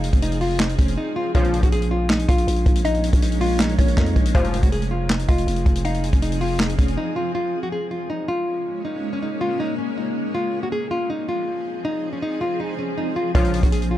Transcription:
Already playing: 808-style bass F1, ambient pad F3 C4 G#4, nylon-string guitar D#4, synth pluck F5
0.04 closed hi-hat
0.13 808-style bass F1, nylon-string guitar C#4, kick, closed hi-hat
0.22 nylon-string guitar D#4, closed hi-hat
0.32 closed hi-hat
0.41 nylon-string guitar F4, open hi-hat
0.60 nylon-string guitar D#4, snare, clap, hi-hat pedal
0.69 closed hi-hat
0.79 808-style bass F1, nylon-string guitar C#4, kick, closed hi-hat
0.88 closed hi-hat
0.98 nylon-string guitar D#4
1.16 nylon-string guitar F4
1.35 808-style bass A#1, analog polysynth C#2 A#2 F3, ambient pad G#3 A#3 C#4, nylon-string guitar F4, synth pluck C#5, kick, closed hi-hat
1.44 closed hi-hat
1.54 closed hi-hat
1.63 808-style bass A#1, nylon-string guitar F#4, kick, closed hi-hat
1.72 nylon-string guitar G#4, closed hi-hat
1.82 closed hi-hat
1.91 nylon-string guitar F4
2.10 nylon-string guitar D#4, snare, clap
2.19 closed hi-hat
2.28 808-style bass A#1, nylon-string guitar F4, synth pluck F5, kick, closed hi-hat
2.38 closed hi-hat
2.47 808-style bass A#1, closed hi-hat
2.56 closed hi-hat
2.66 808-style bass A#1, kick, closed hi-hat
2.75 closed hi-hat
2.85 nylon-string guitar D#4, synth pluck D#5, closed hi-hat
2.94 closed hi-hat
3.04 closed hi-hat
3.13 808-style bass A#1, nylon-string guitar C#4, kick, closed hi-hat
3.22 nylon-string guitar D#4, closed hi-hat
3.32 closed hi-hat
3.41 nylon-string guitar F4, open hi-hat
3.60 nylon-string guitar D#4, snare, clap, hi-hat pedal
3.69 closed hi-hat
3.78 808-style bass A#1, nylon-string guitar C#4, synth pluck C#5, kick, closed hi-hat
3.88 closed hi-hat
3.97 808-style bass F2, nylon-string guitar D#4, kick, snare, clap
4.06 closed hi-hat
4.16 808-style bass A#1, kick, closed hi-hat
4.25 closed hi-hat
4.35 808-style bass F1, analog polysynth C2 G#2 F3, ambient pad F3 C4 G#4, nylon-string guitar F4, synth pluck C5, kick, closed hi-hat
4.44 closed hi-hat
4.54 closed hi-hat
4.63 808-style bass F1, nylon-string guitar F#4, kick, closed hi-hat
4.72 nylon-string guitar G#4, closed hi-hat
4.82 closed hi-hat
4.91 nylon-string guitar F4
5.10 nylon-string guitar D#4, snare, clap
5.19 closed hi-hat
5.28 808-style bass F1, nylon-string guitar F4, synth pluck D#5, kick, closed hi-hat
5.38 closed hi-hat
5.47 808-style bass F1, closed hi-hat
5.56 closed hi-hat
5.66 808-style bass F1, kick, closed hi-hat
5.75 closed hi-hat
5.85 nylon-string guitar D#4, synth pluck F5, closed hi-hat
5.94 closed hi-hat
6.04 closed hi-hat
6.13 808-style bass F1, nylon-string guitar C#4, kick, closed hi-hat
6.22 nylon-string guitar D#4, closed hi-hat
6.32 closed hi-hat
6.41 nylon-string guitar F4, open hi-hat
6.60 nylon-string guitar D#4, snare, clap, hi-hat pedal
6.69 closed hi-hat
6.79 808-style bass F1, nylon-string guitar C#4, kick, closed hi-hat
6.88 closed hi-hat
6.97 nylon-string guitar D#4
7.16 nylon-string guitar F4
7.35 ambient pad G#3 A#3 C#4, nylon-string guitar F4
7.63 nylon-string guitar F#4
7.72 nylon-string guitar G#4
7.91 nylon-string guitar F4
8.10 nylon-string guitar D#4
8.28 nylon-string guitar F4
8.85 nylon-string guitar D#4
9.13 nylon-string guitar C#4
9.22 nylon-string guitar D#4
9.41 nylon-string guitar F4
9.60 nylon-string guitar D#4
9.78 nylon-string guitar C#4
9.97 nylon-string guitar D#4
10.35 ambient pad F3 C4 G#4, nylon-string guitar F4
10.63 nylon-string guitar F#4
10.72 nylon-string guitar G#4
10.91 nylon-string guitar F4
11.10 nylon-string guitar D#4
11.29 nylon-string guitar F4
11.85 nylon-string guitar D#4
12.13 nylon-string guitar C#4
12.22 nylon-string guitar D#4
12.41 nylon-string guitar F4
12.60 nylon-string guitar D#4
12.79 nylon-string guitar C#4
12.98 nylon-string guitar D#4
13.16 nylon-string guitar F4
13.35 808-style bass A#1, analog polysynth C#2 A#2 F3, ambient pad G#3 A#3 C#4, nylon-string guitar F4, synth pluck C#5, kick, closed hi-hat
13.44 closed hi-hat
13.54 closed hi-hat
13.63 808-style bass A#1, nylon-string guitar F#4, kick, closed hi-hat
13.72 nylon-string guitar G#4, closed hi-hat
13.82 closed hi-hat
13.91 nylon-string guitar F4

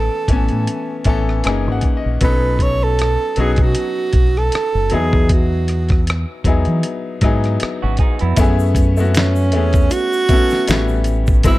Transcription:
Already playing: grand piano E3 A3 B3 C#4 G#5, tenor saxophone A4
0.28 fingered electric bass A1, grand piano E3 A3 B3 C#4, kick, closed hi-hat
0.32 grand piano G#5
0.49 fingered electric bass A2, closed hi-hat
0.67 closed hi-hat
1.04 fingered electric bass A1, grand piano E3 A3 B3 C#4 A5, kick, closed hi-hat
1.09 grand piano A4
1.29 cross-stick
1.44 fingered electric bass F#1, grand piano E3 A#3 C#4 D#4 G#4 G#5, cross-stick, closed hi-hat
1.67 fingered electric bass G#1
1.72 grand piano F#5
1.81 kick, closed hi-hat
1.97 grand piano D#5
2.06 fingered electric bass A#1
2.21 fingered electric bass B1, grand piano F#3 B3 C#4 D#4 A4, tenor saxophone B4, kick, closed hi-hat
2.59 tenor saxophone C#5, kick, closed hi-hat
2.84 tenor saxophone A4
2.99 cross-stick, closed hi-hat
3.36 fingered electric bass B1, grand piano F#3 B3 C#4 D#4 F#4, closed hi-hat
3.41 tenor saxophone G#4
3.53 tenor saxophone G#4, closed hi-hat
3.58 fingered electric bass B2, kick
3.62 tenor saxophone F#4
3.75 closed hi-hat
4.13 fingered electric bass B1, kick, closed hi-hat
4.37 tenor saxophone A4, cross-stick
4.52 cross-stick, closed hi-hat
4.75 fingered electric bass F#1
4.90 fingered electric bass E2, grand piano F#3 B3 D#4 E4, closed hi-hat
4.94 grand piano G#4, tenor saxophone G#4
5.13 kick
5.29 kick, closed hi-hat
5.33 tenor saxophone F#4
5.68 cross-stick, closed hi-hat
5.89 kick, cross-stick, closed hi-hat
6.07 cross-stick, closed hi-hat
6.44 fingered electric bass E2, grand piano F#3 B3 D#4 E4 G#4, kick, closed hi-hat
6.65 fingered electric bass E3, closed hi-hat
6.83 closed hi-hat
7.21 fingered electric bass G#2, grand piano F#3 B3 D#4 E4 G#4, kick, cross-stick, closed hi-hat
7.44 cross-stick, closed hi-hat
7.60 muted fingered electric bass stroke, cross-stick, closed hi-hat
7.82 fingered electric bass G#1, clean electric guitar C#4 F#4
7.97 clean electric guitar D#4 G#4, kick, closed hi-hat
8.19 fingered electric bass F2, clean electric guitar B3 E4, closed hi-hat
8.36 fingered electric bass F#2, grand piano A3 B3 C#4 E4, kick, closed hi-hat, shaker
8.41 grand piano G#4
8.59 shaker
8.75 kick, closed hi-hat, shaker
8.97 grand piano A3 B3 C#4 E4 F#4, shaker
9.15 tenor saxophone C#4, finger snap, snare, closed hi-hat, shaker
9.36 shaker
9.52 fingered electric bass E2, grand piano A3 B3 C#4 E4, closed hi-hat
9.56 grand piano G#4
9.73 kick, closed hi-hat, shaker
9.91 tenor saxophone F#4, closed hi-hat, shaker
10.13 shaker
10.29 grand piano A3 B3 C#4 E4, kick, closed hi-hat, shaker
10.33 grand piano A4
10.50 snare, shaker
10.68 fingered electric bass A1, grand piano G3 A3 B3 C#4 E4, finger snap, snare, closed hi-hat, shaker
10.88 shaker
11.04 closed hi-hat, shaker
11.27 kick, shaker
11.43 fingered electric bass G#1, grand piano F#3 G#3 B3 C4, tenor saxophone E4, kick, closed hi-hat, shaker
11.48 grand piano E4

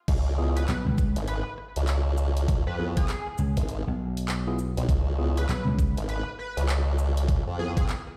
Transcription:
0.08 wobble bass C#2, kick, closed hi-hat, crash
0.38 tine electric piano B3 E4 F4 G#4
0.56 analog synth lead B4, cross-stick, closed hi-hat
0.67 slap bass B1, analog synth lead B4, clap, closed hi-hat
0.87 slap bass C#2, cross-stick
0.98 kick, shaker
1.16 wobble bass G#1, closed hi-hat
1.27 analog synth lead B4, closed hi-hat
1.58 cross-stick
1.76 wobble bass C#2, closed hi-hat
1.88 clap, closed hi-hat
2.18 shaker
2.37 closed hi-hat
2.48 kick, closed hi-hat
2.66 wobble bass F2, analog synth lead B4
2.79 tine electric piano B3 E4 F4 G#4
2.96 analog synth lead G#4, kick, cross-stick, closed hi-hat
3.08 clap, closed hi-hat
3.27 cross-stick
3.38 slap bass C#2, shaker
3.57 wobble bass G#1, kick, closed hi-hat
3.69 closed hi-hat
3.87 slap bass B1
4.17 closed hi-hat
4.28 clap, closed hi-hat
4.47 tine electric piano B3 E4 F4 G#4
4.59 shaker
4.77 wobble bass B1, closed hi-hat
4.88 wobble bass C#2, kick, closed hi-hat
5.18 tine electric piano B3 E4 F4 G#4
5.37 analog synth lead B4, cross-stick, closed hi-hat
5.49 slap bass B1, analog synth lead B4, clap, closed hi-hat
5.67 slap bass C#2, cross-stick
5.79 kick, shaker
5.97 wobble bass G#1, closed hi-hat
6.09 analog synth lead B4, closed hi-hat
6.39 analog synth lead B4, cross-stick
6.57 wobble bass C#2, closed hi-hat
6.69 clap, closed hi-hat
6.98 shaker
7.17 closed hi-hat
7.28 kick, closed hi-hat
7.47 wobble bass F2
7.58 tine electric piano B3 E4 F4 G#4, analog synth lead G#4
7.77 analog synth lead G#4, kick, cross-stick, closed hi-hat
7.89 clap, closed hi-hat
8.07 cross-stick

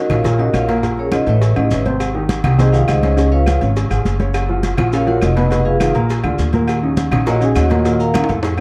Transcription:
Already playing: vibraphone D#4 F#4 D#5
0.10 upright bass A#1, grand piano C#3 C#4 D#4, vibraphone F4 A#4 C#5 F5, cowbell, high conga, low conga, low agogo, claves, maracas
0.24 grand piano A#2 A#3 A#4, cowbell, high conga, low conga, maracas
0.39 grand piano C#3 C#4 D#4, vibraphone D#4 F#4 A#4 D#5, high conga, low agogo
0.53 upright bass A#1, vibraphone F4 A#4 C#5 F5, cowbell, high conga, low timbale, low agogo, claves, maracas
0.68 grand piano A#2 A#3 A#4, cowbell, low agogo, maracas
0.83 grand piano A#2 A#3 A#4, cowbell, high conga, low agogo, maracas
0.97 vibraphone C#4 G#4 A#4 C#5, high conga
1.12 grand piano C#3 C#4 F4, vibraphone D#4 D#5, cowbell, high conga, low agogo, claves, maracas
1.26 upright bass A1, grand piano A2 A3 A4, vibraphone E4 B4 C#5 E5, low agogo, maracas
1.41 cowbell, high conga, maracas
1.56 upright bass A1, grand piano C#3 C#4 E4, vibraphone D#4 D#5, high conga, low agogo, claves
1.71 upright bass G#1, vibraphone E4 B4 C#5 E5, cowbell, high conga, maracas
1.85 grand piano C3 C4 C5, high conga, low agogo, maracas
2.00 cowbell, high conga, low agogo, claves, maracas
2.14 grand piano D#3 D#4 G4, high conga
2.29 cowbell, high conga, low agogo, maracas
2.44 upright bass C2, grand piano D#3 D#4 G4, cowbell, high conga, low conga, low agogo, claves, maracas
2.58 grand piano C3 C4 C5, vibraphone D#4 G#4 C5 D#5, cowbell, high conga, low conga, maracas
2.72 grand piano D#3 D#4 G4, vibraphone F4 F5, high conga, low agogo, maracas
2.88 upright bass C#2, vibraphone D#4 G#4 C5 D#5, cowbell, high conga, low agogo, claves, maracas
3.03 grand piano C#3 C#4 C#5, cowbell, high conga, low agogo, maracas
3.17 grand piano C#3 C#4 C#5, cowbell, high conga, low agogo, maracas
3.32 vibraphone F4 B4 C#5 F5, high conga
3.46 grand piano F3 F4 G#4, cowbell, high conga, low agogo, claves, maracas
3.61 upright bass G#1, grand piano C#3 C#4 C#5, low agogo, maracas
3.76 cowbell, high conga, maracas
3.90 upright bass G#1, grand piano F3 F4 G#4, high conga, low agogo, claves, maracas
4.05 upright bass F#1, cowbell, high conga, maracas
4.19 grand piano C#3 C#4 C#5, high conga, low agogo, maracas
4.34 cowbell, high conga, low agogo, claves, maracas
4.49 grand piano F3 F4 F#4, high conga
4.63 cowbell, high conga, low agogo, maracas
4.77 upright bass A#1, grand piano F3 F4 F#4, cowbell, high conga, low conga, low agogo, claves, maracas
4.93 grand piano C#3 C#4 C#5, vibraphone F4 A#4 C#5 F5, cowbell, high conga, maracas
5.07 grand piano F3 F4 F#4, vibraphone F#4 A#4 C#5 F#5, high conga, low agogo
5.21 upright bass F1, vibraphone D#4 D#5, cowbell, high conga, low agogo, claves, maracas
5.36 grand piano B2 B3 B4, cowbell, low agogo, maracas
5.51 grand piano B2 B3 B4, cowbell, high conga, low agogo, maracas
5.65 vibraphone F4 G#4 B4 F5, high conga
5.80 grand piano D#3 D#4 F4, cowbell, high conga, low agogo, claves, maracas
5.94 upright bass A#1, grand piano A#2 A#3 A#4, low agogo, maracas
6.10 cowbell, high conga, maracas
6.24 upright bass D2, grand piano D3 D4 F4, high conga, low agogo, claves
6.38 upright bass D#2, cowbell, high conga, maracas
6.53 grand piano A#2 A#3 A#4, high conga, low agogo, maracas
6.68 cowbell, high conga, low agogo, claves, maracas
6.83 grand piano C#3 C#4 D#4, high conga
6.97 cowbell, high conga, low agogo, maracas
7.11 upright bass A#1, grand piano C#3 C#4 D#4, cowbell, high conga, low conga, low agogo, claves, maracas
7.26 grand piano A#2 A#3 A#4, vibraphone F#4 C#5 D#5 F#5, cowbell, high conga, maracas
7.41 grand piano C#3 C#4 D#4, vibraphone G#4 G#5, high conga, low agogo, maracas
7.55 upright bass D#2, vibraphone F#4 C#5 D#5 F#5, cowbell, high conga, low agogo, claves, maracas
7.70 grand piano A#2 A#3 A#4, cowbell, high conga, low agogo, maracas
7.85 grand piano A#2 A#3 A#4, cowbell, high conga, low agogo, maracas
8.00 vibraphone A#4 F5 F#5 A#5, high conga, maracas
8.14 grand piano C#3 C#4 D#4, cowbell, high conga, high timbale, low agogo, claves, maracas
8.24 high timbale
8.29 upright bass F2, grand piano A2 A3 A4, low agogo, maracas
8.43 cowbell, high conga, high timbale, maracas

